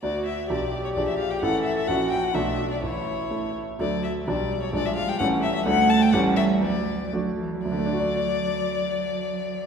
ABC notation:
X:1
M:2/4
L:1/16
Q:1/4=126
K:D
V:1 name="Violin"
d2 e2 d3 c | d e =f g ^f2 e e | f2 g f e3 d | c6 z2 |
d2 e2 d3 c | d e =f g ^f2 e e | f2 a g f2 e2 | d4 z4 |
d8- | d8 |]
V:2 name="Grand piano"
[D,,DFd]4 [B,,,DGd]4 | [_B,,,D_Ad]4 [=A,,,CE=A]4 | [^A,,,CEF]4 [B,,,=A,DF]4 | A,,,4 [A,EA]4 |
[D,,F,DA]4 [B,,,G,Dd]4 | [_B,,,_A,Dd]4 [=A,,,=A,CA]4 | [D,,A,DA]4 [A,,,A,CG]4 | D,,4 [A,DF]4 |
[D,,D,A,DFd]8- | [D,,D,A,DFd]8 |]
V:3 name="Cello" clef=bass
F4 G4- | G4 A4 | F4 D4 | E6 z2 |
F,4 G,4- | G,8 | A,4 G,4 | F,4 F,2 E,2 |
F,8- | F,8 |]